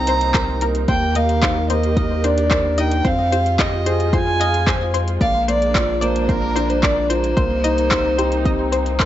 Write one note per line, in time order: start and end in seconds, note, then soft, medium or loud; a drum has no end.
0.00 0.86 C2 medium
0.00 0.87 C3 medium
0.00 0.85 A#3 medium
0.00 0.89 A#3 medium
0.00 0.91 C4 medium
0.00 0.87 D#4 loud
0.00 0.91 D#4 medium
0.00 0.90 G4 medium
0.00 0.62 A#5 loud
0.07 0.23 C5 loud
0.07 0.15 C5 medium
0.07 closed hi-hat medium
0.21 closed hi-hat soft
0.34 0.50 A#4 medium
0.34 0.38 C5 medium
0.34 kick loud
0.34 clap medium
0.34 closed hi-hat soft
0.61 0.87 A#4 medium
0.61 0.68 A#4 medium
0.61 closed hi-hat medium
0.75 closed hi-hat soft
0.88 3.02 D#2 medium
0.88 3.02 D#3 medium
0.88 1.14 A#3 medium
0.88 3.02 G4 medium
0.88 3.02 A#4 medium
0.88 0.93 C5 medium
0.88 1.18 G5 loud
0.88 kick loud
0.88 closed hi-hat soft
1.15 1.41 A#3 medium
1.15 1.22 D#5 medium
1.15 1.70 F5 loud
1.15 closed hi-hat medium
1.29 closed hi-hat soft
1.42 1.68 D#4 medium
1.42 1.49 C5 medium
1.42 kick loud
1.42 clap medium
1.42 closed hi-hat soft
1.70 1.96 A#3 medium
1.70 1.74 C5 medium
1.70 2.26 D#5 medium
1.70 closed hi-hat medium
1.83 closed hi-hat soft
1.96 2.22 A#4 medium
1.96 2.03 D#5 loud
1.96 kick loud
1.96 closed hi-hat soft
2.24 2.39 D4 medium
2.24 2.30 C5 medium
2.24 2.81 D5 loud
2.24 closed hi-hat medium
2.38 closed hi-hat soft
2.51 2.66 A#4 medium
2.51 2.55 C5 medium
2.51 kick loud
2.51 clap medium
2.51 closed hi-hat soft
2.77 3.03 D#4 medium
2.77 2.84 D#5 loud
2.77 3.08 G5 loud
2.77 closed hi-hat medium
2.91 closed hi-hat soft
3.04 5.18 F2 medium
3.04 7.33 G#3 medium
3.04 3.31 C4 medium
3.04 5.19 F4 medium
3.04 3.11 C5 medium
3.04 3.62 F5 loud
3.04 kick loud
3.04 closed hi-hat soft
3.32 3.57 G4 medium
3.32 3.36 C5 medium
3.32 closed hi-hat medium
3.46 closed hi-hat soft
3.59 3.85 G4 medium
3.59 3.65 D#5 loud
3.59 4.16 D#5 loud
3.59 kick loud
3.59 clap medium
3.59 closed hi-hat soft
3.86 4.12 G#4 medium
3.86 3.92 C5 medium
3.86 closed hi-hat medium
4.00 closed hi-hat soft
4.13 4.39 F4 medium
4.13 4.17 C5 medium
4.13 4.95 G#5 loud
4.13 kick loud
4.13 closed hi-hat soft
4.40 4.47 D#5 loud
4.40 4.55 F5 loud
4.40 closed hi-hat medium
4.54 closed hi-hat soft
4.67 4.82 C5 medium
4.67 4.73 C5 medium
4.67 kick loud
4.67 clap medium
4.67 closed hi-hat soft
4.94 4.98 C5 medium
4.94 5.20 C5 medium
4.94 closed hi-hat medium
5.08 closed hi-hat soft
5.21 7.34 A#1 medium
5.21 5.46 A#3 medium
5.21 9.05 A#3 medium
5.21 7.35 D4 medium
5.21 5.27 D5 loud
5.21 5.46 F5 loud
5.21 kick medium
5.21 closed hi-hat soft
5.48 5.74 A#3 medium
5.48 5.54 C5 medium
5.48 6.03 D5 loud
5.48 closed hi-hat medium
5.62 closed hi-hat soft
5.74 6.01 F4 medium
5.74 5.79 C5 medium
5.74 kick loud
5.74 clap loud
5.74 closed hi-hat soft
6.01 6.28 A#3 medium
6.01 6.30 C5 loud
6.01 6.08 D5 loud
6.01 closed hi-hat medium
6.16 closed hi-hat soft
6.28 6.70 A#4 loud
6.28 6.55 A#4 medium
6.28 6.35 C5 medium
6.28 kick medium
6.28 closed hi-hat soft
6.56 6.72 D4 loud
6.56 6.60 C5 medium
6.56 closed hi-hat medium
6.69 6.84 C5 medium
6.69 closed hi-hat soft
6.82 6.99 A#4 medium
6.82 7.10 D5 loud
6.82 6.89 D5 loud
6.82 kick loud
6.82 clap medium
6.82 closed hi-hat soft
7.09 7.36 F4 medium
7.09 8.99 C5 loud
7.09 7.16 C5 medium
7.09 closed hi-hat medium
7.24 closed hi-hat soft
7.37 9.05 C2 medium
7.37 9.05 C3 medium
7.37 7.63 A#3 medium
7.37 9.05 D#4 medium
7.37 7.41 C5 medium
7.37 kick loud
7.37 closed hi-hat soft
7.64 7.90 D#4 medium
7.64 7.70 D#5 loud
7.64 closed hi-hat medium
7.78 closed hi-hat soft
7.91 8.17 D#4 medium
7.91 7.97 C5 medium
7.91 kick loud
7.91 clap loud
7.91 closed hi-hat soft
8.18 8.44 G4 medium
8.18 8.22 C5 medium
8.18 closed hi-hat medium
8.32 closed hi-hat soft
8.45 8.71 C4 medium
8.45 8.52 D#5 loud
8.45 kick medium
8.45 closed hi-hat soft
8.72 8.88 C5 loud
8.72 8.76 C5 medium
8.72 closed hi-hat medium
8.86 closed hi-hat soft
8.99 9.05 A#4 medium
8.99 9.03 C5 medium
8.99 kick loud
8.99 clap loud
8.99 closed hi-hat soft